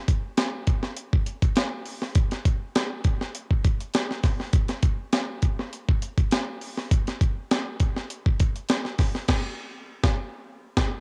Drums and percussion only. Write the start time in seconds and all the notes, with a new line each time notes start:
0.08 kick, closed hi-hat
0.37 snare, closed hi-hat
0.67 kick, closed hi-hat
0.83 snare
0.97 closed hi-hat
1.13 kick
1.26 closed hi-hat
1.42 kick, closed hi-hat
1.56 snare, closed hi-hat
1.86 open hi-hat
2.02 snare
2.15 kick, closed hi-hat
2.31 snare, closed hi-hat
2.46 kick, closed hi-hat
2.76 snare, closed hi-hat
3.04 kick, closed hi-hat
3.21 snare
3.35 closed hi-hat
3.51 kick
3.65 kick, closed hi-hat
3.81 closed hi-hat
3.94 snare, closed hi-hat
4.11 snare
4.23 kick, snare, open hi-hat
4.40 snare
4.53 kick, closed hi-hat
4.68 snare, closed hi-hat
4.82 kick, closed hi-hat
5.13 snare, closed hi-hat
5.42 kick, closed hi-hat
5.59 snare
5.73 closed hi-hat
5.88 kick
6.02 closed hi-hat
6.17 kick, closed hi-hat
6.31 snare, closed hi-hat
6.61 open hi-hat
6.77 snare
6.91 kick, closed hi-hat
7.07 snare, closed hi-hat
7.21 kick, closed hi-hat
7.51 snare, closed hi-hat
7.80 kick, closed hi-hat
7.96 snare
8.10 closed hi-hat
8.26 kick
8.39 kick, closed hi-hat
8.56 closed hi-hat
8.69 snare, closed hi-hat
8.85 snare
8.98 kick, snare, open hi-hat
9.15 snare
9.28 kick, snare, crash
10.04 kick, snare
10.77 kick, snare